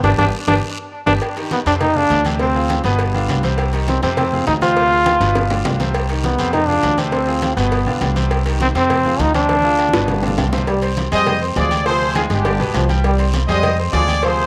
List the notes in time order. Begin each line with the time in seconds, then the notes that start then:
0.03 G1 B3 D4 G4, cowbell, high conga, high timbale, long guiro
0.18 G1 B3 D4 G4, cowbell, high conga, high timbale, long guiro
0.47 G1 B3 D4 G4, cowbell, high conga, high timbale, long guiro
1.06 G1 B3 D4 G4, cowbell, high conga, high timbale, long guiro
1.22 cowbell, high conga, low agogo, long guiro
1.36 D#3 D#4 G4, cowbell, high conga, low agogo
1.51 B3, cowbell, high conga, low timbale, short guiro
1.66 F2 C3 C4 D4 C5, cowbell, high conga, low agogo, short guiro
1.81 D#4, cowbell, high conga, low conga, low agogo, long guiro
1.96 F3 D4 F4 G#4, high conga, low conga
2.10 D2, cowbell, high conga, low timbale, low agogo, short guiro
2.25 C3 C4 C5, cowbell, high conga, low agogo, short guiro
2.39 C3 C4 C5, cowbell, high conga, long guiro
2.55 F3 F4 G#4, high conga
2.69 cowbell, high conga, low timbale, low agogo, short guiro
2.84 G1 B2 B3 B4, cowbell, high conga, short guiro
2.99 cowbell, high conga, low agogo, long guiro
3.14 D3 D4 F4, high conga, low agogo
3.28 C2 D3 D4 F4, cowbell, high conga, low timbale, low agogo, short guiro
3.43 C3 C4 C5, cowbell, high conga, short guiro
3.58 cowbell, high conga, low agogo, long guiro
3.73 D#3 D#4 G4, cowbell, high conga, low agogo
3.88 C4, cowbell, high conga, low timbale, short guiro
4.03 F2 C3 C4 C5, cowbell, high conga, low agogo, short guiro
4.17 C4, cowbell, high conga, low conga, low agogo, long guiro
4.32 F3 F4 G#4, high conga, low conga
4.47 D2 D#4, cowbell, high conga, low timbale, low agogo, short guiro
4.61 C3 C4 F4 C5, cowbell, high conga, low agogo, short guiro
4.76 C3 C4 C5, cowbell, high conga, long guiro
4.91 F3 F4 G#4, high conga
5.06 cowbell, high bongo, high conga, high timbale, low agogo, short guiro
5.20 G1 B2 B3 B4, cowbell, high conga, high timbale, short guiro
5.35 cowbell, low bongo, high conga, high timbale, low agogo, long guiro
5.50 D3 D4 F4, low bongo, high conga, low timbale, low agogo
5.65 C2 D3 D4 F4, cowbell, low bongo, high conga, low timbale, low agogo, short guiro
5.80 C3 C4 C5, cowbell, low bongo, high conga, low timbale, short guiro
5.94 cowbell, high conga, low agogo, long guiro
6.09 D#3 D#4 G4, cowbell, high conga, low agogo
6.24 B3, cowbell, high conga, low timbale, short guiro
6.38 F2 C3 C4 C5, cowbell, high conga, low agogo, short guiro
6.53 D#4, cowbell, high conga, low conga, low agogo, long guiro
6.67 F3 D4 F4 G#4, high conga, low conga
6.83 D2, cowbell, high conga, low timbale, low agogo, short guiro
6.98 C3 C4 C5, cowbell, high conga, low agogo, short guiro
7.11 C3 C4 C5, cowbell, high conga, long guiro
7.27 F3 F4 G#4, high conga
7.42 cowbell, high conga, low timbale, low agogo, short guiro
7.56 G1 B2 B3 B4, cowbell, high conga, short guiro
7.72 cowbell, high conga, low agogo, long guiro
7.86 B1 D3 D4 F4, high conga, low agogo
8.01 C2 D3 D4 F4, cowbell, high conga, low timbale, low agogo, short guiro
8.16 C3 C4 C5, cowbell, high conga, short guiro
8.31 cowbell, high conga, low agogo, long guiro
8.46 D#3 D#4 G4, cowbell, high conga, low agogo
8.60 C4, cowbell, high conga, low timbale, short guiro
8.75 F2 C3 C4 C5, cowbell, high conga, low agogo, short guiro
8.90 cowbell, high conga, low conga, low agogo, long guiro
9.05 F3 F4 G#4, high conga, low conga
9.19 D2 D#4, cowbell, high conga, low timbale, low agogo, short guiro
9.34 C3 C4 D4 C5, cowbell, high conga, low agogo, short guiro
9.49 C3 C4 C5, cowbell, high conga, long guiro
9.60 high conga
9.64 F3 F4 G#4
9.79 cowbell, low timbale, low agogo, short guiro
9.89 high conga
9.93 G1 B2 B3 B4, cowbell, high bongo, short guiro
10.08 cowbell, low bongo, low conga, low agogo, long guiro
10.23 D3 D4 F4, low bongo, high timbale, low agogo
10.28 low conga
10.38 C2 D3 D4 F4, cowbell, low bongo, high timbale, low agogo, short guiro
10.48 low conga
10.52 C3 C4 C5, cowbell, low bongo, low timbale, short guiro
10.58 low conga
10.67 G3, cowbell, high conga, low agogo, long guiro
10.82 C4 C5 C6, cowbell, high conga, low agogo
10.97 cowbell, high conga, low timbale, short guiro
11.12 F2 G3 G#3 G#4 C5 D#5 G#5, cowbell, high conga, low agogo, short guiro
11.26 cowbell, high conga, low conga, low agogo, long guiro
11.41 C4 C5 C6, high conga
11.56 D2 F3 G#3 G#4 D5 G#5, cowbell, high conga, low timbale, low agogo, short guiro
11.71 cowbell, high conga, low agogo, short guiro
11.85 C3 F3 C4 G#4 C5, cowbell, high conga, long guiro
12.01 high conga
12.15 G#3 F4 G#4 G#5, cowbell, high conga, low timbale, low agogo, short guiro
12.30 G1 G#3 D4 G4, cowbell, high conga, short guiro
12.45 D3 D4 D5, cowbell, high conga, low agogo, long guiro
12.60 B1 B2 B3 B4, high conga, low agogo
12.74 C2 F3, cowbell, high conga, low timbale, low agogo, short guiro
12.89 G3 G4 G5, cowbell, high conga, short guiro
13.04 G3, cowbell, high conga, low agogo, long guiro
13.19 C4 C5 C6, cowbell, high conga, low agogo
13.34 cowbell, high conga, low timbale, short guiro
13.48 F2 G3 G#3 G#4 C5 D#5 G#5, cowbell, high conga, low agogo, short guiro
13.63 cowbell, high conga, low conga, low agogo, long guiro
13.78 C4 C5 C6, high conga
13.93 D2 F3 G#3 G#4 D5 G#5, cowbell, high conga, low timbale, low agogo, short guiro
14.08 cowbell, high conga, low agogo, short guiro
14.22 C3 F3 C4 G#4 C5, cowbell, high conga, long guiro
14.38 high conga